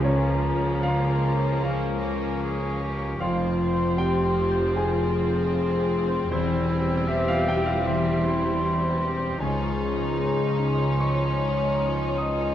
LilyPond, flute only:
\new Staff \with { instrumentName = "Flute" } { \time 4/4 \key f \minor \tempo 4 = 77 bes''4 bes''4 des'''4 des'''4 | c'''2~ c'''8 r8 c'''4 | e'''2 c'''2 | des'''4 c'''2. | }